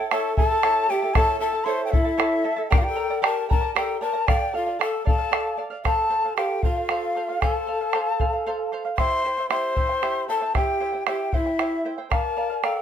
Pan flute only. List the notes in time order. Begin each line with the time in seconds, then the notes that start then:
0.11 A4
0.38 A4
0.89 G4
1.15 A4
1.40 A4
1.66 C5
1.86 C5
1.93 E4
2.72 A#4
2.80 F4
2.87 A4
3.25 A#4
3.51 A#4
3.76 A4
4.01 A#4
4.28 D5
4.55 F4
4.81 A4
5.07 A4
5.85 A4
6.36 G4
6.63 F4
7.41 A4
8.97 C5
9.50 C5
10.29 A4
10.56 G4
11.07 G4
11.34 E4
12.12 A#4
12.63 A4